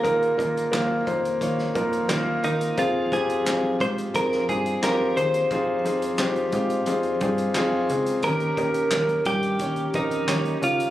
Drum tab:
HH |xxxxx-xxx-xxx-xx|x-xxx-xxx-xxx-xx|x-xxxxxxxxxxx-xx|xxxxxxxxxxxxxxxx|
CP |----x-------x---|----x-------x---|----x-------x---|----x-------x---|
SD |----o----o--o---|----o----o--o---|----o-------o---|----o-------o---|
BD |o-o---o-o-o-----|o-o---o-o-o-----|o-----o---o-----|o-o---o-o-o-----|